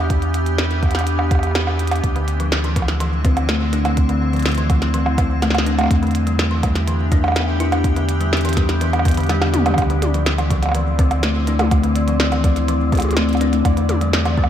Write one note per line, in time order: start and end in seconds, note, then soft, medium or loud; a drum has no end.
0.00 2.01 E2 medium
0.00 2.00 E3 medium
0.00 2.00 B3 medium
0.00 2.00 D4 medium
0.00 2.00 G4 medium
0.10 kick loud
0.10 closed hi-hat medium
0.22 closed hi-hat soft
0.34 closed hi-hat medium
0.46 closed hi-hat medium
0.58 snare loud
0.58 closed hi-hat medium
0.71 closed hi-hat soft
0.83 kick loud
0.83 closed hi-hat soft
0.83 percussion blips soft
0.86 percussion blips soft
0.89 closed hi-hat soft
0.89 percussion blips soft
0.92 snare medium
0.92 closed hi-hat soft
0.92 percussion blips soft
0.95 percussion blips soft
0.98 closed hi-hat medium
0.98 percussion blips soft
1.01 percussion blips soft
1.04 closed hi-hat medium
1.04 percussion blips soft
1.19 percussion blips medium
1.31 kick loud
1.31 closed hi-hat medium
1.31 percussion blips soft
1.35 percussion blips soft
1.39 percussion blips soft
1.43 closed hi-hat soft
1.43 percussion blips soft
1.47 percussion blips soft
1.51 percussion blips soft
1.55 snare loud
1.55 closed hi-hat medium
1.55 percussion blips soft
1.67 percussion blips medium
1.79 closed hi-hat medium
1.87 closed hi-hat medium
1.91 closed hi-hat soft
1.91 percussion blips medium
1.96 closed hi-hat soft
2.04 5.88 D2 medium
2.04 5.87 D3 medium
2.04 5.87 C4 medium
2.04 5.87 E4 medium
2.04 kick loud
2.04 closed hi-hat medium
2.16 2.27 D3 medium
2.16 closed hi-hat soft
2.28 closed hi-hat medium
2.40 2.47 F3 medium
2.40 closed hi-hat medium
2.52 snare loud
2.52 closed hi-hat medium
2.64 2.69 E3 medium
2.64 closed hi-hat soft
2.76 2.87 F3 medium
2.76 kick loud
2.76 closed hi-hat medium
2.82 percussion blips soft
2.88 snare medium
2.88 closed hi-hat soft
3.00 3.12 E3 medium
3.00 closed hi-hat medium
3.25 3.32 C4 loud
3.25 kick loud
3.25 closed hi-hat medium
3.37 closed hi-hat soft
3.37 percussion blips medium
3.49 3.53 A3 medium
3.49 snare loud
3.49 closed hi-hat medium
3.73 3.84 D4 loud
3.73 closed hi-hat medium
3.85 3.89 A3 medium
3.85 closed hi-hat soft
3.85 percussion blips medium
3.97 kick loud
3.97 closed hi-hat medium
4.09 4.20 D3 medium
4.09 closed hi-hat soft
4.33 4.41 F3 medium
4.33 closed hi-hat soft
4.36 closed hi-hat soft
4.39 closed hi-hat soft
4.42 snare loud
4.42 closed hi-hat soft
4.46 closed hi-hat medium
4.49 closed hi-hat soft
4.52 closed hi-hat soft
4.55 4.62 E3 medium
4.55 closed hi-hat soft
4.58 closed hi-hat soft
4.70 4.81 F3 medium
4.70 kick loud
4.70 closed hi-hat medium
4.70 percussion blips soft
4.82 snare medium
4.82 closed hi-hat soft
4.94 5.05 E3 medium
4.94 closed hi-hat medium
5.06 percussion blips medium
5.18 5.25 C4 loud
5.18 kick loud
5.18 closed hi-hat medium
5.18 percussion blips medium
5.42 5.47 A3 medium
5.42 snare medium
5.42 closed hi-hat medium
5.42 percussion blips soft
5.50 snare medium
5.55 snare medium
5.55 closed hi-hat soft
5.55 percussion blips medium
5.66 5.78 D4 medium
5.66 closed hi-hat medium
5.78 5.83 A3 medium
5.78 closed hi-hat medium
5.78 percussion blips medium
5.81 percussion blips medium
5.83 percussion blips soft
5.86 percussion blips soft
5.88 9.75 E2 medium
5.88 9.74 E3 medium
5.88 9.74 B3 medium
5.88 9.74 D4 medium
5.88 9.74 G4 medium
5.88 kick loud
5.88 closed hi-hat medium
5.88 percussion blips soft
6.03 6.14 D3 medium
6.03 closed hi-hat soft
6.07 closed hi-hat soft
6.11 closed hi-hat soft
6.15 closed hi-hat medium
6.27 6.34 G3 medium
6.27 closed hi-hat medium
6.39 snare loud
6.39 closed hi-hat medium
6.51 6.56 E3 medium
6.63 6.74 G3 medium
6.63 kick loud
6.63 closed hi-hat medium
6.63 percussion blips soft
6.75 snare medium
6.75 closed hi-hat soft
6.87 6.99 E3 medium
6.87 closed hi-hat medium
7.12 7.19 D4 loud
7.12 kick loud
7.12 closed hi-hat medium
7.24 percussion blips medium
7.28 percussion blips soft
7.32 7.40 B3 medium
7.32 percussion blips soft
7.36 snare loud
7.36 closed hi-hat medium
7.36 percussion blips soft
7.40 percussion blips soft
7.44 percussion blips soft
7.60 7.71 E4 loud
7.60 closed hi-hat medium
7.72 7.77 B3 medium
7.72 closed hi-hat medium
7.72 percussion blips medium
7.84 kick loud
7.84 closed hi-hat medium
7.96 8.07 D3 medium
7.96 closed hi-hat soft
8.09 closed hi-hat medium
8.20 8.28 G3 medium
8.20 closed hi-hat medium
8.33 snare loud
8.33 closed hi-hat soft
8.37 closed hi-hat soft
8.41 8.49 E3 medium
8.41 closed hi-hat soft
8.45 closed hi-hat medium
8.49 closed hi-hat medium
8.53 8.68 G3 medium
8.53 closed hi-hat medium
8.57 kick loud
8.57 snare medium
8.57 closed hi-hat medium
8.69 snare medium
8.69 closed hi-hat medium
8.81 8.92 E3 medium
8.81 closed hi-hat medium
8.93 closed hi-hat soft
8.93 percussion blips medium
8.99 percussion blips medium
9.05 9.10 B3 medium
9.05 kick loud
9.05 closed hi-hat medium
9.08 closed hi-hat medium
9.11 closed hi-hat medium
9.14 closed hi-hat soft
9.17 9.28 D3 medium
9.17 closed hi-hat medium
9.20 closed hi-hat soft
9.23 closed hi-hat soft
9.27 snare medium
9.27 closed hi-hat soft
9.29 9.37 G3 loud
9.29 closed hi-hat medium
9.29 percussion blips soft
9.42 snare medium
9.42 closed hi-hat soft
9.42 percussion blips medium
9.54 9.61 D3 medium
9.54 closed hi-hat medium
9.54 mid tom medium
9.66 9.73 G3 medium
9.66 closed hi-hat medium
9.66 mid tom medium
9.66 percussion blips medium
9.74 13.63 D2 loud
9.74 14.49 D5 medium
9.74 kick loud
9.74 percussion blips medium
9.78 13.61 D3 medium
9.78 13.61 C4 medium
9.78 13.61 E4 medium
9.78 closed hi-hat medium
9.78 percussion blips medium
9.82 percussion blips medium
9.90 10.01 D3 medium
9.90 closed hi-hat soft
10.02 closed hi-hat medium
10.02 high tom medium
10.14 10.22 F3 medium
10.14 closed hi-hat medium
10.26 snare loud
10.26 closed hi-hat medium
10.38 10.43 E3 medium
10.38 closed hi-hat soft
10.38 percussion blips medium
10.50 10.61 F3 medium
10.50 kick loud
10.50 closed hi-hat medium
10.63 closed hi-hat medium
10.63 percussion blips soft
10.66 percussion blips soft
10.69 percussion blips soft
10.72 10.86 E3 medium
10.72 closed hi-hat medium
10.72 percussion blips medium
10.99 11.06 C4 loud
10.99 kick loud
10.99 closed hi-hat medium
11.11 closed hi-hat medium
11.11 percussion blips medium
11.23 11.27 A3 medium
11.23 snare loud
11.23 closed hi-hat medium
11.47 11.58 D4 loud
11.47 closed hi-hat medium
11.59 11.64 A3 medium
11.59 closed hi-hat medium
11.59 high tom medium
11.59 percussion blips medium
11.71 kick loud
11.71 closed hi-hat medium
11.71 percussion blips medium
11.84 11.95 D3 medium
11.84 closed hi-hat soft
11.96 closed hi-hat medium
12.08 12.15 F3 medium
12.08 closed hi-hat medium
12.20 snare loud
12.20 closed hi-hat medium
12.32 12.36 E3 medium
12.32 closed hi-hat soft
12.32 percussion blips medium
12.44 12.55 F3 medium
12.44 kick loud
12.44 closed hi-hat medium
12.56 closed hi-hat medium
12.68 12.79 E3 medium
12.68 closed hi-hat medium
12.92 13.00 C4 medium
12.92 kick loud
12.92 closed hi-hat soft
12.92 high tom soft
12.95 closed hi-hat soft
12.95 high tom medium
12.97 closed hi-hat medium
12.97 percussion blips soft
13.00 closed hi-hat medium
13.00 high tom medium
13.02 closed hi-hat medium
13.02 high tom medium
13.09 closed hi-hat medium
13.09 high tom medium
13.13 13.21 A3 medium
13.13 snare loud
13.13 closed hi-hat medium
13.13 high tom medium
13.29 closed hi-hat soft
13.33 closed hi-hat soft
13.33 percussion blips soft
13.37 13.52 D4 loud
13.37 closed hi-hat soft
13.41 closed hi-hat medium
13.53 13.57 A3 medium
13.53 closed hi-hat medium
13.65 14.49 E2 medium
13.65 14.49 E3 medium
13.65 14.49 B3 medium
13.65 14.49 D4 medium
13.65 14.49 G4 medium
13.65 kick loud
13.65 closed hi-hat medium
13.65 percussion blips medium
13.77 13.88 D3 medium
13.77 closed hi-hat soft
13.89 closed hi-hat medium
13.89 high tom medium
14.01 14.09 G3 medium
14.01 closed hi-hat medium
14.13 snare loud
14.13 closed hi-hat medium
14.25 14.30 E3 medium
14.25 closed hi-hat soft
14.25 percussion blips soft
14.37 14.49 G3 medium
14.37 kick loud
14.44 percussion blips medium